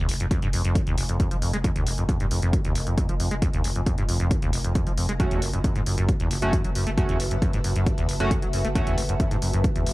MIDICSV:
0, 0, Header, 1, 6, 480
1, 0, Start_track
1, 0, Tempo, 444444
1, 1774, Time_signature, 4, 2, 24, 8
1, 10728, End_track
2, 0, Start_track
2, 0, Title_t, "Ambient pad"
2, 0, Program_c, 0, 92
2, 0, Note_on_c, 0, 65, 77
2, 0, Note_on_c, 0, 70, 86
2, 0, Note_on_c, 0, 75, 86
2, 0, Note_on_c, 0, 80, 82
2, 5614, Note_off_c, 0, 65, 0
2, 5614, Note_off_c, 0, 70, 0
2, 5614, Note_off_c, 0, 75, 0
2, 5614, Note_off_c, 0, 80, 0
2, 5614, Note_on_c, 0, 66, 73
2, 5784, Note_on_c, 0, 71, 74
2, 5801, Note_on_c, 0, 81, 72
2, 6009, Note_on_c, 0, 76, 95
2, 10252, Note_on_c, 0, 80, 76
2, 10395, Note_off_c, 0, 81, 0
2, 10728, Note_off_c, 0, 66, 0
2, 10728, Note_off_c, 0, 71, 0
2, 10728, Note_off_c, 0, 76, 0
2, 10728, Note_off_c, 0, 80, 0
2, 10728, End_track
3, 0, Start_track
3, 0, Title_t, "Analog polysynth"
3, 0, Program_c, 1, 90
3, 5614, Note_on_c, 1, 57, 81
3, 5614, Note_on_c, 1, 61, 69
3, 5614, Note_on_c, 1, 66, 89
3, 5834, Note_off_c, 1, 57, 0
3, 5834, Note_off_c, 1, 61, 0
3, 5834, Note_off_c, 1, 66, 0
3, 6936, Note_on_c, 1, 61, 91
3, 6937, Note_on_c, 1, 57, 101
3, 6937, Note_on_c, 1, 66, 109
3, 7072, Note_off_c, 1, 57, 0
3, 7072, Note_off_c, 1, 61, 0
3, 7072, Note_off_c, 1, 66, 0
3, 7534, Note_on_c, 1, 57, 80
3, 7534, Note_on_c, 1, 61, 77
3, 7534, Note_on_c, 1, 66, 91
3, 7754, Note_off_c, 1, 57, 0
3, 7754, Note_off_c, 1, 61, 0
3, 7754, Note_off_c, 1, 66, 0
3, 8856, Note_on_c, 1, 66, 115
3, 8857, Note_on_c, 1, 57, 101
3, 8857, Note_on_c, 1, 61, 92
3, 8992, Note_off_c, 1, 57, 0
3, 8992, Note_off_c, 1, 61, 0
3, 8992, Note_off_c, 1, 66, 0
3, 9453, Note_on_c, 1, 57, 80
3, 9453, Note_on_c, 1, 61, 75
3, 9453, Note_on_c, 1, 66, 89
3, 9674, Note_off_c, 1, 57, 0
3, 9674, Note_off_c, 1, 61, 0
3, 9674, Note_off_c, 1, 66, 0
3, 10728, End_track
4, 0, Start_track
4, 0, Title_t, "Acid bass"
4, 0, Program_c, 2, 38
4, 94, Note_on_c, 2, 29, 76
4, 162, Note_off_c, 2, 29, 0
4, 217, Note_on_c, 2, 41, 77
4, 281, Note_off_c, 2, 41, 0
4, 334, Note_on_c, 2, 41, 85
4, 435, Note_off_c, 2, 41, 0
4, 457, Note_on_c, 2, 43, 105
4, 521, Note_off_c, 2, 43, 0
4, 574, Note_on_c, 2, 41, 79
4, 675, Note_off_c, 2, 41, 0
4, 697, Note_on_c, 2, 41, 100
4, 814, Note_on_c, 2, 43, 98
4, 830, Note_off_c, 2, 41, 0
4, 881, Note_off_c, 2, 43, 0
4, 937, Note_on_c, 2, 39, 104
4, 1033, Note_off_c, 2, 39, 0
4, 1054, Note_on_c, 2, 29, 78
4, 1121, Note_off_c, 2, 29, 0
4, 1177, Note_on_c, 2, 41, 72
4, 1273, Note_off_c, 2, 41, 0
4, 1417, Note_on_c, 2, 53, 81
4, 1481, Note_off_c, 2, 53, 0
4, 1534, Note_on_c, 2, 41, 77
4, 1635, Note_off_c, 2, 41, 0
4, 1657, Note_on_c, 2, 56, 99
4, 1695, Note_off_c, 2, 56, 0
4, 1774, Note_on_c, 2, 41, 104
4, 1842, Note_off_c, 2, 41, 0
4, 1897, Note_on_c, 2, 39, 101
4, 1994, Note_off_c, 2, 39, 0
4, 2014, Note_on_c, 2, 29, 77
4, 2082, Note_off_c, 2, 29, 0
4, 2137, Note_on_c, 2, 41, 79
4, 2201, Note_off_c, 2, 41, 0
4, 2254, Note_on_c, 2, 41, 82
4, 2355, Note_off_c, 2, 41, 0
4, 2377, Note_on_c, 2, 43, 107
4, 2441, Note_off_c, 2, 43, 0
4, 2494, Note_on_c, 2, 41, 80
4, 2595, Note_off_c, 2, 41, 0
4, 2617, Note_on_c, 2, 41, 102
4, 2734, Note_on_c, 2, 43, 101
4, 2750, Note_off_c, 2, 41, 0
4, 2802, Note_off_c, 2, 43, 0
4, 2857, Note_on_c, 2, 39, 99
4, 2953, Note_off_c, 2, 39, 0
4, 2974, Note_on_c, 2, 29, 79
4, 3041, Note_off_c, 2, 29, 0
4, 3097, Note_on_c, 2, 41, 73
4, 3194, Note_off_c, 2, 41, 0
4, 3215, Note_on_c, 2, 41, 81
4, 3316, Note_off_c, 2, 41, 0
4, 3338, Note_on_c, 2, 53, 82
4, 3402, Note_off_c, 2, 53, 0
4, 3454, Note_on_c, 2, 41, 76
4, 3555, Note_off_c, 2, 41, 0
4, 3577, Note_on_c, 2, 56, 99
4, 3616, Note_off_c, 2, 56, 0
4, 3694, Note_on_c, 2, 41, 102
4, 3762, Note_off_c, 2, 41, 0
4, 3817, Note_on_c, 2, 39, 101
4, 3913, Note_off_c, 2, 39, 0
4, 3934, Note_on_c, 2, 29, 74
4, 4002, Note_off_c, 2, 29, 0
4, 4057, Note_on_c, 2, 41, 78
4, 4121, Note_off_c, 2, 41, 0
4, 4174, Note_on_c, 2, 41, 83
4, 4275, Note_off_c, 2, 41, 0
4, 4297, Note_on_c, 2, 43, 100
4, 4361, Note_off_c, 2, 43, 0
4, 4414, Note_on_c, 2, 41, 79
4, 4515, Note_off_c, 2, 41, 0
4, 4536, Note_on_c, 2, 41, 99
4, 4654, Note_on_c, 2, 43, 104
4, 4670, Note_off_c, 2, 41, 0
4, 4721, Note_off_c, 2, 43, 0
4, 4776, Note_on_c, 2, 39, 101
4, 4873, Note_off_c, 2, 39, 0
4, 4893, Note_on_c, 2, 29, 82
4, 4961, Note_off_c, 2, 29, 0
4, 5017, Note_on_c, 2, 41, 71
4, 5113, Note_off_c, 2, 41, 0
4, 5257, Note_on_c, 2, 53, 78
4, 5321, Note_off_c, 2, 53, 0
4, 5374, Note_on_c, 2, 41, 77
4, 5475, Note_off_c, 2, 41, 0
4, 5497, Note_on_c, 2, 56, 97
4, 5535, Note_off_c, 2, 56, 0
4, 5614, Note_on_c, 2, 42, 105
4, 5681, Note_off_c, 2, 42, 0
4, 5736, Note_on_c, 2, 40, 107
4, 5833, Note_off_c, 2, 40, 0
4, 5854, Note_on_c, 2, 30, 76
4, 5921, Note_off_c, 2, 30, 0
4, 5976, Note_on_c, 2, 42, 75
4, 6041, Note_off_c, 2, 42, 0
4, 6093, Note_on_c, 2, 42, 84
4, 6195, Note_off_c, 2, 42, 0
4, 6216, Note_on_c, 2, 44, 104
4, 6281, Note_off_c, 2, 44, 0
4, 6333, Note_on_c, 2, 42, 79
4, 6435, Note_off_c, 2, 42, 0
4, 6456, Note_on_c, 2, 42, 102
4, 6573, Note_on_c, 2, 44, 101
4, 6590, Note_off_c, 2, 42, 0
4, 6641, Note_off_c, 2, 44, 0
4, 6696, Note_on_c, 2, 40, 100
4, 6793, Note_off_c, 2, 40, 0
4, 6813, Note_on_c, 2, 30, 81
4, 6881, Note_off_c, 2, 30, 0
4, 6937, Note_on_c, 2, 42, 74
4, 7033, Note_off_c, 2, 42, 0
4, 7054, Note_on_c, 2, 42, 82
4, 7155, Note_off_c, 2, 42, 0
4, 7176, Note_on_c, 2, 54, 77
4, 7241, Note_off_c, 2, 54, 0
4, 7294, Note_on_c, 2, 42, 79
4, 7395, Note_off_c, 2, 42, 0
4, 7417, Note_on_c, 2, 57, 104
4, 7455, Note_off_c, 2, 57, 0
4, 7534, Note_on_c, 2, 42, 98
4, 7602, Note_off_c, 2, 42, 0
4, 7657, Note_on_c, 2, 40, 103
4, 7753, Note_off_c, 2, 40, 0
4, 7774, Note_on_c, 2, 30, 74
4, 7842, Note_off_c, 2, 30, 0
4, 7897, Note_on_c, 2, 42, 78
4, 7961, Note_off_c, 2, 42, 0
4, 8014, Note_on_c, 2, 42, 85
4, 8115, Note_off_c, 2, 42, 0
4, 8137, Note_on_c, 2, 44, 101
4, 8201, Note_off_c, 2, 44, 0
4, 8254, Note_on_c, 2, 42, 82
4, 8355, Note_off_c, 2, 42, 0
4, 8377, Note_on_c, 2, 42, 105
4, 8493, Note_on_c, 2, 44, 103
4, 8510, Note_off_c, 2, 42, 0
4, 8561, Note_off_c, 2, 44, 0
4, 8617, Note_on_c, 2, 40, 107
4, 8713, Note_off_c, 2, 40, 0
4, 8734, Note_on_c, 2, 30, 80
4, 8802, Note_off_c, 2, 30, 0
4, 8857, Note_on_c, 2, 42, 77
4, 8953, Note_off_c, 2, 42, 0
4, 9097, Note_on_c, 2, 54, 80
4, 9161, Note_off_c, 2, 54, 0
4, 9214, Note_on_c, 2, 42, 80
4, 9315, Note_off_c, 2, 42, 0
4, 9337, Note_on_c, 2, 57, 101
4, 9375, Note_off_c, 2, 57, 0
4, 9454, Note_on_c, 2, 42, 103
4, 9522, Note_off_c, 2, 42, 0
4, 9577, Note_on_c, 2, 40, 105
4, 9673, Note_off_c, 2, 40, 0
4, 9694, Note_on_c, 2, 30, 76
4, 9762, Note_off_c, 2, 30, 0
4, 9817, Note_on_c, 2, 42, 78
4, 9881, Note_off_c, 2, 42, 0
4, 9934, Note_on_c, 2, 42, 83
4, 10035, Note_off_c, 2, 42, 0
4, 10057, Note_on_c, 2, 44, 106
4, 10121, Note_off_c, 2, 44, 0
4, 10174, Note_on_c, 2, 42, 83
4, 10275, Note_off_c, 2, 42, 0
4, 10297, Note_on_c, 2, 42, 101
4, 10414, Note_on_c, 2, 44, 107
4, 10431, Note_off_c, 2, 42, 0
4, 10482, Note_off_c, 2, 44, 0
4, 10537, Note_on_c, 2, 40, 101
4, 10634, Note_off_c, 2, 40, 0
4, 10654, Note_on_c, 2, 30, 83
4, 10722, Note_off_c, 2, 30, 0
4, 10728, End_track
5, 0, Start_track
5, 0, Title_t, "Sub bass"
5, 0, Program_c, 3, 38
5, 94, Note_on_c, 3, 29, 104
5, 211, Note_off_c, 3, 29, 0
5, 217, Note_on_c, 3, 29, 78
5, 332, Note_off_c, 3, 29, 0
5, 458, Note_on_c, 3, 29, 83
5, 568, Note_off_c, 3, 29, 0
5, 575, Note_on_c, 3, 29, 95
5, 691, Note_off_c, 3, 29, 0
5, 697, Note_on_c, 3, 29, 85
5, 812, Note_off_c, 3, 29, 0
5, 938, Note_on_c, 3, 29, 73
5, 1048, Note_off_c, 3, 29, 0
5, 1054, Note_on_c, 3, 29, 99
5, 1171, Note_off_c, 3, 29, 0
5, 1177, Note_on_c, 3, 29, 86
5, 1292, Note_off_c, 3, 29, 0
5, 1417, Note_on_c, 3, 29, 78
5, 1528, Note_off_c, 3, 29, 0
5, 1534, Note_on_c, 3, 29, 97
5, 1651, Note_off_c, 3, 29, 0
5, 1657, Note_on_c, 3, 29, 80
5, 1772, Note_off_c, 3, 29, 0
5, 1897, Note_on_c, 3, 29, 81
5, 2008, Note_off_c, 3, 29, 0
5, 2014, Note_on_c, 3, 29, 107
5, 2131, Note_off_c, 3, 29, 0
5, 2137, Note_on_c, 3, 29, 86
5, 2252, Note_off_c, 3, 29, 0
5, 2377, Note_on_c, 3, 29, 78
5, 2487, Note_off_c, 3, 29, 0
5, 2494, Note_on_c, 3, 29, 98
5, 2610, Note_off_c, 3, 29, 0
5, 2617, Note_on_c, 3, 29, 84
5, 2732, Note_off_c, 3, 29, 0
5, 2857, Note_on_c, 3, 29, 78
5, 2968, Note_off_c, 3, 29, 0
5, 2974, Note_on_c, 3, 29, 94
5, 3091, Note_off_c, 3, 29, 0
5, 3097, Note_on_c, 3, 29, 87
5, 3212, Note_off_c, 3, 29, 0
5, 3337, Note_on_c, 3, 29, 80
5, 3447, Note_off_c, 3, 29, 0
5, 3454, Note_on_c, 3, 29, 94
5, 3570, Note_off_c, 3, 29, 0
5, 3577, Note_on_c, 3, 29, 80
5, 3692, Note_off_c, 3, 29, 0
5, 3817, Note_on_c, 3, 29, 82
5, 3927, Note_off_c, 3, 29, 0
5, 3934, Note_on_c, 3, 29, 102
5, 4050, Note_off_c, 3, 29, 0
5, 4056, Note_on_c, 3, 29, 85
5, 4171, Note_off_c, 3, 29, 0
5, 4296, Note_on_c, 3, 29, 79
5, 4407, Note_off_c, 3, 29, 0
5, 4414, Note_on_c, 3, 29, 95
5, 4530, Note_off_c, 3, 29, 0
5, 4536, Note_on_c, 3, 29, 83
5, 4651, Note_off_c, 3, 29, 0
5, 4776, Note_on_c, 3, 29, 78
5, 4887, Note_off_c, 3, 29, 0
5, 4894, Note_on_c, 3, 29, 98
5, 5010, Note_off_c, 3, 29, 0
5, 5017, Note_on_c, 3, 29, 86
5, 5132, Note_off_c, 3, 29, 0
5, 5256, Note_on_c, 3, 29, 79
5, 5367, Note_off_c, 3, 29, 0
5, 5373, Note_on_c, 3, 29, 97
5, 5490, Note_off_c, 3, 29, 0
5, 5496, Note_on_c, 3, 29, 83
5, 5611, Note_off_c, 3, 29, 0
5, 5737, Note_on_c, 3, 30, 79
5, 5847, Note_off_c, 3, 30, 0
5, 5853, Note_on_c, 3, 30, 105
5, 5970, Note_off_c, 3, 30, 0
5, 5976, Note_on_c, 3, 30, 79
5, 6091, Note_off_c, 3, 30, 0
5, 6216, Note_on_c, 3, 30, 76
5, 6327, Note_off_c, 3, 30, 0
5, 6333, Note_on_c, 3, 30, 101
5, 6450, Note_off_c, 3, 30, 0
5, 6456, Note_on_c, 3, 30, 84
5, 6571, Note_off_c, 3, 30, 0
5, 6696, Note_on_c, 3, 30, 75
5, 6807, Note_off_c, 3, 30, 0
5, 6814, Note_on_c, 3, 30, 98
5, 6930, Note_off_c, 3, 30, 0
5, 6936, Note_on_c, 3, 30, 81
5, 7051, Note_off_c, 3, 30, 0
5, 7177, Note_on_c, 3, 30, 80
5, 7288, Note_off_c, 3, 30, 0
5, 7294, Note_on_c, 3, 30, 91
5, 7410, Note_off_c, 3, 30, 0
5, 7417, Note_on_c, 3, 30, 81
5, 7531, Note_off_c, 3, 30, 0
5, 7657, Note_on_c, 3, 30, 75
5, 7767, Note_off_c, 3, 30, 0
5, 7774, Note_on_c, 3, 30, 105
5, 7890, Note_off_c, 3, 30, 0
5, 7896, Note_on_c, 3, 30, 83
5, 8011, Note_off_c, 3, 30, 0
5, 8136, Note_on_c, 3, 30, 82
5, 8247, Note_off_c, 3, 30, 0
5, 8253, Note_on_c, 3, 30, 94
5, 8370, Note_off_c, 3, 30, 0
5, 8376, Note_on_c, 3, 30, 84
5, 8491, Note_off_c, 3, 30, 0
5, 8616, Note_on_c, 3, 30, 76
5, 8727, Note_off_c, 3, 30, 0
5, 8733, Note_on_c, 3, 30, 97
5, 8850, Note_off_c, 3, 30, 0
5, 8856, Note_on_c, 3, 30, 86
5, 8971, Note_off_c, 3, 30, 0
5, 9097, Note_on_c, 3, 30, 78
5, 9207, Note_off_c, 3, 30, 0
5, 9214, Note_on_c, 3, 30, 95
5, 9330, Note_off_c, 3, 30, 0
5, 9337, Note_on_c, 3, 30, 82
5, 9452, Note_off_c, 3, 30, 0
5, 9576, Note_on_c, 3, 30, 79
5, 9687, Note_off_c, 3, 30, 0
5, 9694, Note_on_c, 3, 30, 107
5, 9811, Note_off_c, 3, 30, 0
5, 9817, Note_on_c, 3, 30, 81
5, 9932, Note_off_c, 3, 30, 0
5, 10057, Note_on_c, 3, 30, 78
5, 10167, Note_off_c, 3, 30, 0
5, 10174, Note_on_c, 3, 30, 97
5, 10291, Note_off_c, 3, 30, 0
5, 10297, Note_on_c, 3, 30, 82
5, 10412, Note_off_c, 3, 30, 0
5, 10537, Note_on_c, 3, 30, 76
5, 10648, Note_off_c, 3, 30, 0
5, 10654, Note_on_c, 3, 30, 97
5, 10728, Note_off_c, 3, 30, 0
5, 10728, End_track
6, 0, Start_track
6, 0, Title_t, "Drums"
6, 94, Note_on_c, 9, 46, 112
6, 202, Note_off_c, 9, 46, 0
6, 217, Note_on_c, 9, 42, 54
6, 325, Note_off_c, 9, 42, 0
6, 334, Note_on_c, 9, 36, 117
6, 334, Note_on_c, 9, 42, 93
6, 442, Note_off_c, 9, 36, 0
6, 442, Note_off_c, 9, 42, 0
6, 457, Note_on_c, 9, 42, 53
6, 565, Note_off_c, 9, 42, 0
6, 574, Note_on_c, 9, 46, 112
6, 682, Note_off_c, 9, 46, 0
6, 697, Note_on_c, 9, 42, 55
6, 805, Note_off_c, 9, 42, 0
6, 814, Note_on_c, 9, 36, 125
6, 815, Note_on_c, 9, 42, 95
6, 922, Note_off_c, 9, 36, 0
6, 923, Note_off_c, 9, 42, 0
6, 937, Note_on_c, 9, 42, 53
6, 1045, Note_off_c, 9, 42, 0
6, 1054, Note_on_c, 9, 46, 113
6, 1162, Note_off_c, 9, 46, 0
6, 1177, Note_on_c, 9, 42, 55
6, 1285, Note_off_c, 9, 42, 0
6, 1294, Note_on_c, 9, 36, 118
6, 1294, Note_on_c, 9, 42, 96
6, 1402, Note_off_c, 9, 36, 0
6, 1402, Note_off_c, 9, 42, 0
6, 1417, Note_on_c, 9, 42, 57
6, 1525, Note_off_c, 9, 42, 0
6, 1534, Note_on_c, 9, 46, 104
6, 1642, Note_off_c, 9, 46, 0
6, 1657, Note_on_c, 9, 42, 58
6, 1765, Note_off_c, 9, 42, 0
6, 1774, Note_on_c, 9, 36, 123
6, 1774, Note_on_c, 9, 42, 94
6, 1882, Note_off_c, 9, 36, 0
6, 1882, Note_off_c, 9, 42, 0
6, 1897, Note_on_c, 9, 42, 54
6, 2005, Note_off_c, 9, 42, 0
6, 2015, Note_on_c, 9, 46, 115
6, 2123, Note_off_c, 9, 46, 0
6, 2137, Note_on_c, 9, 42, 53
6, 2245, Note_off_c, 9, 42, 0
6, 2254, Note_on_c, 9, 36, 118
6, 2254, Note_on_c, 9, 42, 87
6, 2362, Note_off_c, 9, 36, 0
6, 2362, Note_off_c, 9, 42, 0
6, 2377, Note_on_c, 9, 42, 56
6, 2485, Note_off_c, 9, 42, 0
6, 2494, Note_on_c, 9, 46, 112
6, 2602, Note_off_c, 9, 46, 0
6, 2617, Note_on_c, 9, 42, 54
6, 2725, Note_off_c, 9, 42, 0
6, 2734, Note_on_c, 9, 36, 124
6, 2734, Note_on_c, 9, 42, 94
6, 2842, Note_off_c, 9, 36, 0
6, 2842, Note_off_c, 9, 42, 0
6, 2857, Note_on_c, 9, 42, 52
6, 2965, Note_off_c, 9, 42, 0
6, 2974, Note_on_c, 9, 46, 109
6, 3082, Note_off_c, 9, 46, 0
6, 3097, Note_on_c, 9, 42, 54
6, 3205, Note_off_c, 9, 42, 0
6, 3214, Note_on_c, 9, 36, 127
6, 3214, Note_on_c, 9, 42, 96
6, 3322, Note_off_c, 9, 36, 0
6, 3322, Note_off_c, 9, 42, 0
6, 3337, Note_on_c, 9, 42, 54
6, 3445, Note_off_c, 9, 42, 0
6, 3454, Note_on_c, 9, 46, 103
6, 3562, Note_off_c, 9, 46, 0
6, 3577, Note_on_c, 9, 42, 56
6, 3685, Note_off_c, 9, 42, 0
6, 3694, Note_on_c, 9, 36, 121
6, 3694, Note_on_c, 9, 42, 96
6, 3802, Note_off_c, 9, 36, 0
6, 3802, Note_off_c, 9, 42, 0
6, 3817, Note_on_c, 9, 42, 52
6, 3925, Note_off_c, 9, 42, 0
6, 3934, Note_on_c, 9, 46, 110
6, 4042, Note_off_c, 9, 46, 0
6, 4057, Note_on_c, 9, 42, 48
6, 4165, Note_off_c, 9, 42, 0
6, 4174, Note_on_c, 9, 36, 124
6, 4174, Note_on_c, 9, 42, 86
6, 4282, Note_off_c, 9, 36, 0
6, 4282, Note_off_c, 9, 42, 0
6, 4297, Note_on_c, 9, 42, 50
6, 4405, Note_off_c, 9, 42, 0
6, 4414, Note_on_c, 9, 46, 109
6, 4522, Note_off_c, 9, 46, 0
6, 4537, Note_on_c, 9, 42, 52
6, 4645, Note_off_c, 9, 42, 0
6, 4654, Note_on_c, 9, 36, 122
6, 4654, Note_on_c, 9, 42, 93
6, 4762, Note_off_c, 9, 36, 0
6, 4762, Note_off_c, 9, 42, 0
6, 4777, Note_on_c, 9, 42, 50
6, 4885, Note_off_c, 9, 42, 0
6, 4894, Note_on_c, 9, 46, 106
6, 5002, Note_off_c, 9, 46, 0
6, 5017, Note_on_c, 9, 42, 52
6, 5125, Note_off_c, 9, 42, 0
6, 5134, Note_on_c, 9, 36, 117
6, 5134, Note_on_c, 9, 42, 89
6, 5242, Note_off_c, 9, 36, 0
6, 5242, Note_off_c, 9, 42, 0
6, 5257, Note_on_c, 9, 42, 54
6, 5365, Note_off_c, 9, 42, 0
6, 5374, Note_on_c, 9, 46, 105
6, 5482, Note_off_c, 9, 46, 0
6, 5497, Note_on_c, 9, 42, 51
6, 5605, Note_off_c, 9, 42, 0
6, 5614, Note_on_c, 9, 36, 123
6, 5614, Note_on_c, 9, 42, 87
6, 5722, Note_off_c, 9, 36, 0
6, 5722, Note_off_c, 9, 42, 0
6, 5737, Note_on_c, 9, 42, 50
6, 5845, Note_off_c, 9, 42, 0
6, 5853, Note_on_c, 9, 46, 108
6, 5961, Note_off_c, 9, 46, 0
6, 5977, Note_on_c, 9, 42, 50
6, 6085, Note_off_c, 9, 42, 0
6, 6094, Note_on_c, 9, 36, 119
6, 6094, Note_on_c, 9, 42, 82
6, 6202, Note_off_c, 9, 36, 0
6, 6202, Note_off_c, 9, 42, 0
6, 6217, Note_on_c, 9, 42, 48
6, 6325, Note_off_c, 9, 42, 0
6, 6334, Note_on_c, 9, 46, 108
6, 6442, Note_off_c, 9, 46, 0
6, 6457, Note_on_c, 9, 42, 51
6, 6565, Note_off_c, 9, 42, 0
6, 6574, Note_on_c, 9, 36, 121
6, 6574, Note_on_c, 9, 42, 89
6, 6682, Note_off_c, 9, 36, 0
6, 6682, Note_off_c, 9, 42, 0
6, 6696, Note_on_c, 9, 42, 46
6, 6804, Note_off_c, 9, 42, 0
6, 6814, Note_on_c, 9, 46, 105
6, 6922, Note_off_c, 9, 46, 0
6, 6936, Note_on_c, 9, 42, 54
6, 7044, Note_off_c, 9, 42, 0
6, 7054, Note_on_c, 9, 36, 116
6, 7054, Note_on_c, 9, 42, 85
6, 7162, Note_off_c, 9, 36, 0
6, 7162, Note_off_c, 9, 42, 0
6, 7177, Note_on_c, 9, 42, 52
6, 7285, Note_off_c, 9, 42, 0
6, 7294, Note_on_c, 9, 46, 103
6, 7402, Note_off_c, 9, 46, 0
6, 7416, Note_on_c, 9, 42, 51
6, 7524, Note_off_c, 9, 42, 0
6, 7534, Note_on_c, 9, 36, 107
6, 7534, Note_on_c, 9, 42, 88
6, 7642, Note_off_c, 9, 36, 0
6, 7642, Note_off_c, 9, 42, 0
6, 7656, Note_on_c, 9, 42, 52
6, 7764, Note_off_c, 9, 42, 0
6, 7774, Note_on_c, 9, 46, 104
6, 7882, Note_off_c, 9, 46, 0
6, 7897, Note_on_c, 9, 42, 50
6, 8005, Note_off_c, 9, 42, 0
6, 8014, Note_on_c, 9, 36, 116
6, 8014, Note_on_c, 9, 42, 87
6, 8122, Note_off_c, 9, 36, 0
6, 8122, Note_off_c, 9, 42, 0
6, 8137, Note_on_c, 9, 42, 50
6, 8245, Note_off_c, 9, 42, 0
6, 8254, Note_on_c, 9, 46, 105
6, 8362, Note_off_c, 9, 46, 0
6, 8377, Note_on_c, 9, 42, 52
6, 8485, Note_off_c, 9, 42, 0
6, 8494, Note_on_c, 9, 36, 115
6, 8494, Note_on_c, 9, 42, 85
6, 8602, Note_off_c, 9, 36, 0
6, 8602, Note_off_c, 9, 42, 0
6, 8617, Note_on_c, 9, 42, 49
6, 8725, Note_off_c, 9, 42, 0
6, 8734, Note_on_c, 9, 46, 100
6, 8842, Note_off_c, 9, 46, 0
6, 8857, Note_on_c, 9, 42, 51
6, 8965, Note_off_c, 9, 42, 0
6, 8974, Note_on_c, 9, 36, 116
6, 8974, Note_on_c, 9, 42, 89
6, 9082, Note_off_c, 9, 36, 0
6, 9082, Note_off_c, 9, 42, 0
6, 9097, Note_on_c, 9, 42, 52
6, 9205, Note_off_c, 9, 42, 0
6, 9214, Note_on_c, 9, 46, 98
6, 9322, Note_off_c, 9, 46, 0
6, 9337, Note_on_c, 9, 42, 49
6, 9445, Note_off_c, 9, 42, 0
6, 9454, Note_on_c, 9, 36, 116
6, 9454, Note_on_c, 9, 42, 89
6, 9562, Note_off_c, 9, 36, 0
6, 9562, Note_off_c, 9, 42, 0
6, 9577, Note_on_c, 9, 42, 54
6, 9685, Note_off_c, 9, 42, 0
6, 9694, Note_on_c, 9, 46, 104
6, 9802, Note_off_c, 9, 46, 0
6, 9817, Note_on_c, 9, 42, 51
6, 9925, Note_off_c, 9, 42, 0
6, 9934, Note_on_c, 9, 36, 109
6, 9934, Note_on_c, 9, 42, 92
6, 10042, Note_off_c, 9, 36, 0
6, 10042, Note_off_c, 9, 42, 0
6, 10057, Note_on_c, 9, 42, 52
6, 10165, Note_off_c, 9, 42, 0
6, 10174, Note_on_c, 9, 46, 101
6, 10282, Note_off_c, 9, 46, 0
6, 10297, Note_on_c, 9, 42, 52
6, 10405, Note_off_c, 9, 42, 0
6, 10414, Note_on_c, 9, 36, 119
6, 10414, Note_on_c, 9, 42, 89
6, 10522, Note_off_c, 9, 36, 0
6, 10522, Note_off_c, 9, 42, 0
6, 10537, Note_on_c, 9, 42, 48
6, 10645, Note_off_c, 9, 42, 0
6, 10654, Note_on_c, 9, 46, 102
6, 10728, Note_off_c, 9, 46, 0
6, 10728, End_track
0, 0, End_of_file